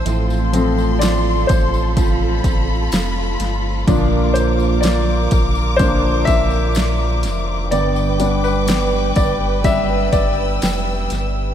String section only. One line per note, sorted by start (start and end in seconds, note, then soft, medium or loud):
0.05 7.67 F4 medium
0.05 3.84 A4 medium
0.05 1.95 C6 medium
1.97 3.86 B5 medium
3.87 7.68 A#4 medium
3.87 7.68 D6 medium
7.72 11.54 B4 medium
7.72 11.54 G5 medium
7.72 9.63 D6 medium
9.65 11.54 E6 medium